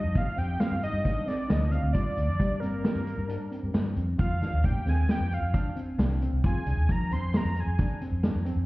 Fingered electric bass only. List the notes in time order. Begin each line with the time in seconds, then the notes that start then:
0.04 F2
0.15 C3
0.38 F2
0.71 G2
0.93 G2
1.50 D2
1.83 D2
1.95 G2
2.17 D2
2.28 F2
2.39 G3
2.62 G2
2.95 G2
3.18 G2
3.63 G2
3.74 G2
3.96 F2
4.19 F2
4.42 F3
4.54 D#2
4.64 A#2
4.86 D#2
5.20 F2
5.42 F2
5.98 C2
6.33 C2
6.44 F2
6.66 C2
6.77 D#2
6.89 F3
7.11 F2
7.44 F2
7.66 F2
8.12 F2
8.35 F2
8.56 F2